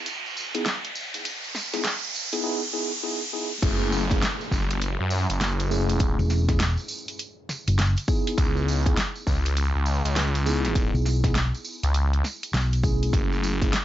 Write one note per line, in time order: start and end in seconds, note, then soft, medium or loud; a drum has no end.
0.00 riser medium
0.06 closed hi-hat medium
0.06 tambourine medium
0.26 tambourine soft
0.37 tambourine medium
0.55 0.64 B3 medium
0.55 0.64 D#4 medium
0.55 0.64 E4 medium
0.55 0.64 G#4 medium
0.55 closed hi-hat medium
0.55 tambourine soft
0.66 snare loud
0.66 closed hi-hat medium
0.66 tambourine medium
0.85 closed hi-hat soft
0.95 tambourine loud
1.14 closed hi-hat medium
1.14 tambourine soft
1.25 closed hi-hat medium
1.25 tambourine medium
1.44 tambourine soft
1.55 snare soft
1.55 tambourine medium
1.74 1.83 B3 medium
1.74 1.83 D#4 medium
1.74 1.83 E4 medium
1.74 1.83 G#4 medium
1.74 snare soft
1.74 closed hi-hat medium
1.74 tambourine soft
1.84 snare loud
1.84 closed hi-hat medium
1.84 tambourine medium
2.15 tambourine loud
2.33 2.42 B3 medium
2.33 2.42 D#4 medium
2.33 2.42 E4 medium
2.33 2.42 G#4 loud
2.33 closed hi-hat medium
2.33 tambourine soft
2.44 2.61 B3 medium
2.44 2.60 D#4 medium
2.44 2.61 E4 medium
2.44 2.60 G#4 medium
2.73 2.90 B3 medium
2.73 2.90 D#4 medium
2.73 2.90 E4 medium
2.73 2.90 G#4 loud
3.03 3.20 B3 medium
3.03 3.20 D#4 medium
3.03 3.20 E4 medium
3.03 3.20 G#4 loud
3.33 3.50 B3 medium
3.33 3.50 D#4 medium
3.33 3.50 E4 medium
3.33 3.50 G#4 loud
3.62 4.20 F#1 loud
3.62 4.04 A3 loud
3.62 4.04 C#4 loud
3.62 4.04 E4 medium
3.62 4.04 G#4 loud
3.62 kick loud
3.62 closed hi-hat medium
3.62 crash loud
3.62 tambourine soft
3.62 downlifter medium
3.81 tambourine soft
3.92 tambourine medium
4.11 4.21 A3 medium
4.11 4.21 C#4 medium
4.11 4.21 E4 medium
4.11 4.21 G#4 loud
4.11 kick loud
4.11 closed hi-hat medium
4.11 tambourine soft
4.22 snare loud
4.22 closed hi-hat medium
4.22 tambourine medium
4.41 tambourine soft
4.51 4.97 F#1 loud
4.51 kick medium
4.51 tambourine medium
4.70 closed hi-hat medium
4.70 tambourine soft
4.82 closed hi-hat medium
4.82 tambourine medium
5.00 5.27 F#2 loud
5.10 tambourine loud
5.30 6.16 F#1 medium
5.30 closed hi-hat medium
5.30 tambourine soft
5.41 snare loud
5.41 closed hi-hat medium
5.41 tambourine medium
5.60 closed hi-hat soft
5.60 tambourine soft
5.71 6.44 A3 medium
5.71 6.44 C#4 medium
5.71 6.44 E4 medium
5.71 6.44 G#4 medium
5.71 tambourine medium
5.89 closed hi-hat medium
5.89 tambourine soft
5.99 kick loud
5.99 closed hi-hat medium
5.99 tambourine soft
6.19 6.75 E1 medium
6.19 tambourine soft
6.30 snare soft
6.30 tambourine loud
6.49 6.59 A3 medium
6.49 6.59 C#4 medium
6.49 6.59 E4 medium
6.49 6.59 G#4 loud
6.49 kick loud
6.49 snare soft
6.49 closed hi-hat medium
6.49 tambourine soft
6.59 snare loud
6.59 closed hi-hat medium
6.59 tambourine medium
6.77 tambourine soft
6.88 tambourine loud
7.08 closed hi-hat medium
7.08 tambourine soft
7.19 closed hi-hat medium
7.19 tambourine medium
7.49 snare medium
7.49 tambourine medium
7.67 7.94 F#1 loud
7.67 closed hi-hat medium
7.67 tambourine soft
7.79 snare loud
7.79 closed hi-hat medium
7.79 tambourine medium
7.97 closed hi-hat soft
7.97 tambourine soft
8.08 8.82 B3 medium
8.08 8.82 D#4 medium
8.08 8.82 E4 medium
8.08 8.82 G#4 medium
8.08 kick loud
8.08 tambourine loud
8.27 closed hi-hat medium
8.27 tambourine soft
8.38 8.96 C#2 loud
8.38 kick loud
8.38 closed hi-hat medium
8.38 tambourine medium
8.57 tambourine soft
8.68 tambourine loud
8.86 8.96 B3 medium
8.86 8.96 D#4 medium
8.86 8.96 E4 medium
8.86 8.96 G#4 loud
8.86 kick loud
8.86 closed hi-hat medium
8.97 snare loud
8.97 closed hi-hat medium
8.97 tambourine medium
9.15 tambourine soft
9.27 9.72 C#2 medium
9.27 kick medium
9.27 tambourine medium
9.45 closed hi-hat medium
9.45 tambourine soft
9.57 closed hi-hat medium
9.57 tambourine medium
9.75 10.02 C#2 loud
9.86 tambourine medium
10.05 10.91 C#2 loud
10.05 closed hi-hat medium
10.05 tambourine soft
10.16 snare loud
10.16 closed hi-hat medium
10.16 tambourine medium
10.35 closed hi-hat soft
10.35 tambourine soft
10.46 11.20 B3 medium
10.46 11.20 D#4 medium
10.46 11.20 E4 medium
10.46 11.20 G#4 medium
10.46 tambourine loud
10.65 snare medium
10.65 closed hi-hat medium
10.65 tambourine soft
10.75 kick loud
10.75 closed hi-hat medium
10.75 tambourine medium
10.94 11.51 B1 medium
10.94 tambourine soft
11.05 snare soft
11.05 tambourine loud
11.24 11.34 B3 medium
11.24 11.34 D#4 medium
11.24 11.34 E4 medium
11.24 11.34 G#4 medium
11.24 kick loud
11.24 snare soft
11.24 closed hi-hat medium
11.24 tambourine soft
11.35 snare loud
11.35 closed hi-hat medium
11.35 tambourine soft
11.54 tambourine soft
11.65 tambourine loud
11.83 12.22 C#2 loud
11.83 closed hi-hat medium
11.83 tambourine soft
11.94 closed hi-hat medium
11.94 tambourine medium
12.13 closed hi-hat soft
12.24 snare soft
12.24 tambourine medium
12.43 closed hi-hat medium
12.43 tambourine soft
12.54 13.11 B1 loud
12.54 snare loud
12.54 closed hi-hat medium
12.54 tambourine soft
12.73 closed hi-hat soft
12.73 tambourine soft
12.83 13.57 A3 medium
12.83 13.57 C#4 medium
12.83 13.57 E4 medium
12.83 13.57 G#4 medium
12.83 kick loud
12.83 tambourine loud
13.03 closed hi-hat medium
13.03 tambourine soft
13.13 13.71 F#1 medium
13.13 kick loud
13.13 closed hi-hat medium
13.13 tambourine soft
13.32 tambourine soft
13.43 tambourine loud
13.62 13.72 A3 medium
13.62 13.71 C#4 medium
13.62 13.72 E4 medium
13.62 13.72 G#4 medium
13.62 kick loud
13.62 closed hi-hat medium
13.62 tambourine soft
13.73 snare loud
13.73 closed hi-hat medium
13.73 tambourine medium